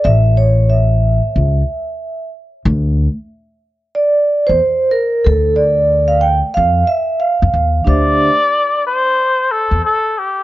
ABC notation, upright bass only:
X:1
M:4/4
L:1/16
Q:"Swing 16ths" 1/4=92
K:Dm
V:1 name="Upright bass" clef=bass
A,,,6- A,,, z ^C,,2 z6 | D,,3 z8 E,, z4 | D,,6- D,, z F,,2 z3 F,, _E,,2 | D,,3 z8 E,, z4 |]